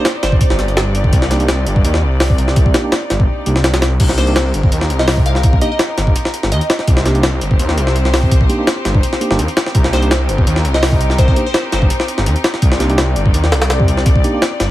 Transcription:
Already playing: string section C4 D#4 G4 D5
0.05 synth pluck C5, snare, closed hi-hat
0.23 detuned saw bass G1, synth pluck C5, snare, closed hi-hat
0.32 kick
0.41 kick, closed hi-hat
0.50 detuned saw bass G1, snare
0.59 snare, closed hi-hat
0.68 closed hi-hat
0.77 snare, closed hi-hat
0.95 closed hi-hat
1.04 kick
1.13 detuned saw bass C2, kick, closed hi-hat
1.22 snare
1.31 tine electric piano A#3 D4 D#4 G4, snare, closed hi-hat
1.40 tine electric piano A#3 D4 D#4 G4, closed hi-hat
1.48 snare, closed hi-hat
1.67 detuned saw bass G1, closed hi-hat
1.76 kick
1.85 detuned saw bass D#2, closed hi-hat
1.94 snare
2.03 detuned saw bass C2
2.20 snare, open hi-hat
2.30 kick
2.38 closed hi-hat
2.48 snare
2.56 kick, closed hi-hat
2.66 kick
2.74 tine electric piano A#3 D4 D#4 G4, snare, closed hi-hat
2.84 tine electric piano A#3 D4 D#4 G4
2.92 snare, closed hi-hat
3.10 detuned saw bass G1, snare, closed hi-hat
3.20 kick
3.46 detuned saw bass C2, tine electric piano A#3 D4 D#4 G4, closed hi-hat
3.56 snare
3.64 snare, closed hi-hat
3.74 snare, closed hi-hat
3.82 snare, closed hi-hat
4.00 detuned saw bass C2, string section C4 D#4 G4 A#4, kick, closed hi-hat, crash
4.09 snare
4.18 tine electric piano A#3 D4 D#4 G4, synth pluck C5, snare, closed hi-hat
4.27 tine electric piano A#3 D4 D#4 G4, closed hi-hat
4.36 snare, closed hi-hat
4.54 detuned saw bass G1, closed hi-hat
4.63 kick
4.72 detuned saw bass D#2, closed hi-hat
4.81 snare
4.90 detuned saw bass C2, closed hi-hat
4.99 synth pluck D#5, snare
5.08 snare, open hi-hat
5.17 kick
5.26 synth pluck F5, closed hi-hat
5.35 snare
5.43 kick, closed hi-hat
5.53 kick
5.62 tine electric piano A#3 D4 D#4 G4, synth pluck D#5, closed hi-hat
5.72 synth pluck D#5
5.79 snare, closed hi-hat
5.98 detuned saw bass G1, snare, closed hi-hat
6.07 kick
6.16 closed hi-hat
6.25 snare
6.34 closed hi-hat
6.43 detuned saw bass G1, snare
6.52 detuned saw bass D#2, synth pluck D#5, closed hi-hat
6.61 closed hi-hat
6.70 snare, closed hi-hat
6.79 snare
6.87 detuned saw bass C2, string section C5, kick, closed hi-hat
6.97 snare
7.06 tine electric piano A#3 D4 D#4 G4, snare, closed hi-hat
7.15 tine electric piano A#3 D4 D#4 G4, closed hi-hat
7.23 snare, closed hi-hat
7.41 detuned saw bass G1, closed hi-hat
7.51 kick
7.59 detuned saw bass D#2, closed hi-hat
7.69 snare
7.78 detuned saw bass C2, closed hi-hat
7.87 snare
7.96 closed hi-hat
8.05 snare
8.14 snare, open hi-hat
8.23 kick
8.31 kick, closed hi-hat
8.41 kick
8.49 tine electric piano A#3 D4 D#4 G4, closed hi-hat
8.58 tine electric piano A#3 D4 D#4 G4
8.67 snare, closed hi-hat
8.85 detuned saw bass G1, snare, closed hi-hat
8.95 kick
9.03 closed hi-hat
9.13 snare
9.21 tine electric piano A#3 D4 D#4 G4, closed hi-hat
9.31 detuned saw bass G1, tine electric piano A#3 D4 D#4 G4, snare
9.39 detuned saw bass D#2, closed hi-hat
9.48 closed hi-hat
9.57 snare, closed hi-hat
9.66 snare
9.75 detuned saw bass C2, string section A#4, kick, closed hi-hat
9.84 snare
9.93 tine electric piano A#3 D4 D#4 G4, synth pluck C5, snare, closed hi-hat
10.02 tine electric piano A#3 D4 D#4 G4, closed hi-hat
10.11 snare, closed hi-hat
10.29 detuned saw bass G1, closed hi-hat
10.38 kick
10.47 detuned saw bass D#2, closed hi-hat
10.56 snare
10.65 detuned saw bass C2, closed hi-hat
10.74 synth pluck D#5, snare
10.83 snare, open hi-hat
10.92 kick
11.01 closed hi-hat
11.10 snare
11.19 synth pluck C5, kick, closed hi-hat
11.28 synth pluck C5, kick
11.36 tine electric piano A#3 D4 D#4 G4, closed hi-hat
11.47 synth pluck C5
11.54 synth pluck C5, snare, closed hi-hat
11.72 detuned saw bass G1, synth pluck C5, snare, closed hi-hat
11.82 kick
11.90 closed hi-hat
12.00 snare
12.08 closed hi-hat
12.18 detuned saw bass G1, snare
12.26 detuned saw bass D#2, closed hi-hat
12.36 closed hi-hat
12.44 snare, closed hi-hat
12.54 snare
12.62 detuned saw bass C2, string section D5, kick, closed hi-hat
12.72 snare
12.80 tine electric piano A#3 D4 D#4 G4, snare, closed hi-hat
12.90 tine electric piano A#3 D4 D#4 G4, closed hi-hat
12.98 snare, closed hi-hat
13.16 detuned saw bass G1, closed hi-hat
13.26 kick
13.34 detuned saw bass D#2, closed hi-hat
13.44 snare
13.52 detuned saw bass C2, snare, closed hi-hat
13.62 snare, closed hi-hat
13.70 snare, closed hi-hat
13.80 kick
13.88 closed hi-hat
13.97 snare
14.06 kick, closed hi-hat
14.16 kick
14.24 tine electric piano A#3 D4 D#4 G4, closed hi-hat
14.33 tine electric piano A#3 D4 D#4 G4
14.42 snare, closed hi-hat
14.60 detuned saw bass G1, snare, closed hi-hat

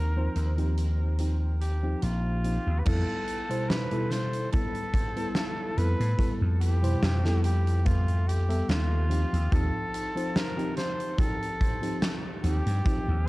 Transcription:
Already playing: slap bass D#2, fm electric piano F3 C4 D#4 G4, flugelhorn A#4
0.16 fm electric piano F3 C4 D#4 C5
0.36 slap bass D#2, closed hi-hat
0.58 fm electric piano F3 C4 D#4 G4, closed hi-hat
0.78 closed hi-hat
1.18 fm electric piano F3 C4 D#4 G4, closed hi-hat
1.61 flugelhorn G4, closed hi-hat
1.83 fm electric piano F3 C4 D#4 G4
2.02 slap bass A#1, flugelhorn F4, closed hi-hat
2.44 fm electric piano F3 C4 D#4 G4, closed hi-hat
2.67 slap bass D#2
2.79 flugelhorn B4
2.85 slap bass F2, fm electric piano G3 B3 E4 A4, flugelhorn A4, kick, closed hi-hat, crash
3.27 closed hi-hat
3.49 fm electric piano B2 G3 E4 C5, closed hi-hat
3.69 flugelhorn B4, snare, closed hi-hat
3.91 fm electric piano B2 G3 E4 A4, closed hi-hat
4.11 flugelhorn C5, snare, closed hi-hat
4.33 closed hi-hat
4.52 fm electric piano G3 B3 E4 A4, flugelhorn A4, kick, closed hi-hat
4.74 closed hi-hat
4.94 kick, closed hi-hat
5.16 fm electric piano G3 B3 E4 A4, closed hi-hat
5.35 snare, closed hi-hat
5.77 slap bass F2, fm electric piano G3 B3 E4 A4, flugelhorn B4, closed hi-hat
6.00 slap bass A2, closed hi-hat
6.18 fm electric piano G3 B3 E4 A4, kick, closed hi-hat
6.41 slap bass F2
6.61 flugelhorn G4, closed hi-hat
6.82 fm electric piano B2 G3 E4 C5, closed hi-hat
7.02 slap bass F2, snare, closed hi-hat
7.24 fm electric piano G3 B3 E4 A4, snare, closed hi-hat
7.44 flugelhorn G4, closed hi-hat
7.67 closed hi-hat
7.84 fm electric piano G3 B3 A4 E5, flugelhorn F4, kick, closed hi-hat
8.08 closed hi-hat
8.28 flugelhorn G4, closed hi-hat
8.48 fm electric piano G3 B3 A4 E5, closed hi-hat
8.69 slap bass D#2, flugelhorn F4, snare, closed hi-hat
9.09 fm electric piano F3 C4 D#4 G4, closed hi-hat
9.33 slap bass D#2, closed hi-hat
9.51 slap bass D#2, fm electric piano F3 C4 D#4 G4, flugelhorn A4, kick, closed hi-hat
9.94 closed hi-hat
10.15 fm electric piano F3 C4 D#4 C5, closed hi-hat
10.36 flugelhorn A#4, snare, closed hi-hat
10.57 fm electric piano F3 C4 D#4 G4, closed hi-hat
10.77 flugelhorn C5, snare, closed hi-hat
11.00 closed hi-hat
11.18 fm electric piano F3 C4 D#4 G4, flugelhorn A4, kick, closed hi-hat
11.43 closed hi-hat
11.61 kick, closed hi-hat
11.82 fm electric piano F3 C4 D#4 G4, closed hi-hat
12.02 snare, closed hi-hat
12.43 slap bass D#2, fm electric piano F3 C4 D#4 G4, flugelhorn G4, closed hi-hat
12.66 slap bass G2, closed hi-hat
12.84 fm electric piano F3 C4 D#4 G4, kick, closed hi-hat
13.08 slap bass D#2

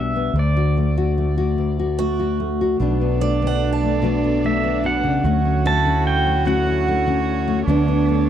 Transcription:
Already playing: fretless electric bass B1, nylon-string guitar B2 G3 B3 D4
0.00 pedal steel guitar E5
0.16 nylon-string guitar B3
0.33 fretless electric bass D2, nylon-string guitar D2
0.39 pedal steel guitar D5
0.57 nylon-string guitar F#4
0.77 nylon-string guitar A3
0.98 nylon-string guitar F#4
1.18 nylon-string guitar A3
1.38 nylon-string guitar F#4
1.58 nylon-string guitar D2
1.79 nylon-string guitar F#4
1.99 nylon-string guitar A3, steel-string acoustic guitar F#4
2.20 nylon-string guitar F#4
2.40 nylon-string guitar A3
2.61 nylon-string guitar F#4
2.79 fretless electric bass B1, nylon-string guitar B2 A3 B3 D4, string section F#3 B3 A4 D5, cello D4
3.01 nylon-string guitar B3
3.21 nylon-string guitar A3, steel-string acoustic guitar D5
3.42 nylon-string guitar D3 B3
3.47 steel-string acoustic guitar F#5
3.73 steel-string acoustic guitar A5
3.83 nylon-string guitar A3
4.02 nylon-string guitar B2 A3 B3 D4
4.24 nylon-string guitar B3
4.44 nylon-string guitar A3, pedal steel guitar E5
4.63 nylon-string guitar D3 B3
4.84 nylon-string guitar B2, pedal steel guitar F#5
5.04 nylon-string guitar C#3
5.24 fretless electric bass D2, nylon-string guitar D2 A3 C#4, string section D3 A3 C#5, cello F#4
5.45 nylon-string guitar C#4
5.66 nylon-string guitar A3, steel-string acoustic guitar E4, pedal steel guitar A5
5.86 nylon-string guitar D3 C#4
6.07 pedal steel guitar G5
6.27 nylon-string guitar A3
6.45 nylon-string guitar D2 A3 C#4 F#4, pedal steel guitar F#5
6.66 nylon-string guitar C#4
6.88 nylon-string guitar A3
7.07 nylon-string guitar D3 C#4
7.48 nylon-string guitar A3
7.66 fretless electric bass D2, nylon-string guitar D2 A3 B3 D4, string section B3 A4, cello D4
7.88 nylon-string guitar B3
8.09 nylon-string guitar A3

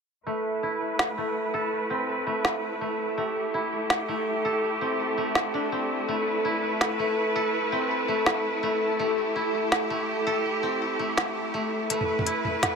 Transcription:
0.26 koto A3, cello section A3 E4 B4, synth texture A4
0.63 koto E4
0.99 snare
1.18 koto A3
1.54 koto A4
1.90 koto C4
2.27 koto A3
2.45 snare
2.81 koto A3
3.18 koto A3, cello section G4
3.54 koto E4
3.90 snare
4.08 koto A3
4.45 koto A4
4.81 koto C4
5.18 koto A3
5.35 snare
5.54 koto D4
5.72 koto C4
6.08 koto A3, cello section B4
6.45 koto E4
6.81 snare
6.99 koto A3
7.36 koto A4
7.72 koto C4
8.08 koto A3
8.26 snare
8.63 koto A3
8.99 koto A3, cello section G4
9.36 koto E4
9.72 snare
9.90 koto A3
10.27 koto A4
10.63 koto C4
10.99 koto A3
11.17 snare
11.54 koto A3
11.90 koto A3, synth texture C4, cello section B4, closed hi-hat
12.01 mid tom
12.19 mid tom
12.26 koto E4, closed hi-hat
12.45 mid tom
12.63 snare, closed hi-hat, mid tom

